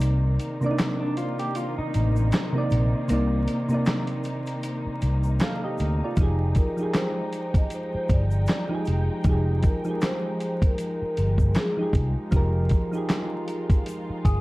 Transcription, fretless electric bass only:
Already playing: C2
1.78 muted fretless electric bass stroke
1.95 A1
2.71 A#1
3.10 C2
4.86 muted fretless electric bass stroke
5.02 C2
5.80 D2
6.17 F1
7.94 muted fretless electric bass stroke
8.10 G1
8.87 F1
9.25 F1
11.02 muted fretless electric bass stroke
11.18 G1
11.93 C2
12.32 F1
14.09 muted fretless electric bass stroke
14.25 G1

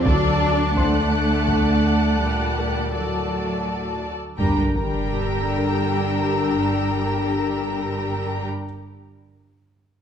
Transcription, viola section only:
0.05 F#4 A4
0.76 A3 F#5
2.94 F#4 A4
4.38 D4 G4
4.74 D4 G4

